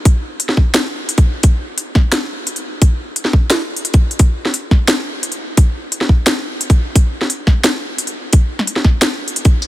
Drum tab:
HH |x---x---x---xx--|x---x---x---xx--|x---x---x--xxx-x|x---x---x---xx--|
SD |-----o--o-------|------o-o-------|-----o--o-------|---o--o-o-------|
BD |o-----o------o--|o-----o---------|o-----o------o--|o-----o---------|

HH |x---x---x---xx--|x---x---x---xx--|x---x---x--xxx-x|
SD |-----o--o-------|---o--o-o-------|---o-oo-o-------|
BD |o-----o------o--|o-----o---------|o-----o------o--|